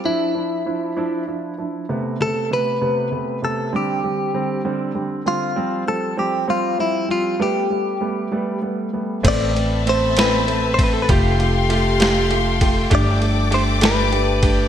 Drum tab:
CC |------|------|------|------|
RD |------|------|------|------|
SD |------|------|------|------|
BD |------|------|------|------|

CC |------|x-----|------|------|
RD |------|xxxxxx|xxxxxx|xxxxxx|
SD |------|---o--|---o--|---o--|
BD |------|o----o|o----o|o----o|